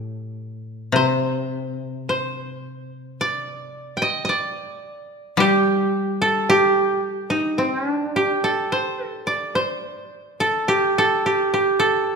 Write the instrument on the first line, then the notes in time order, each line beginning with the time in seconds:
koto
Already playing: A2 G4 A4
0.92 C3 C5
2.09 C5
3.21 D5
3.97 G5
4.02 D#5
4.25 D#5
4.29 D5
5.37 G3 G4
6.22 A4
6.50 G4
7.30 D#4
7.58 C4
7.78 C#4
7.90 D4
8.16 G4
8.44 A4
8.72 C5
9.07 A4
9.27 D5
9.55 C5
10.40 A4
10.68 G4
10.98 A4
11.26 G4
11.54 G4
11.79 A4